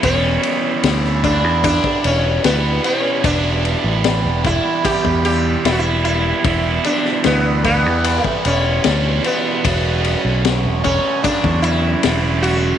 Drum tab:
RD |x-x-x-x-x-x-x-x-|x-x-x-x-x-x-x-x-|x-x-x-x-x-x-x-x-|x-x-x-x-x-x-x-x-|
SD |----oo------o---|----o-------o---|--ooo-------o---|----o-------o---|
BD |o-----o-oo------|o-----o-oo------|o-----o--o------|o-----o-oo------|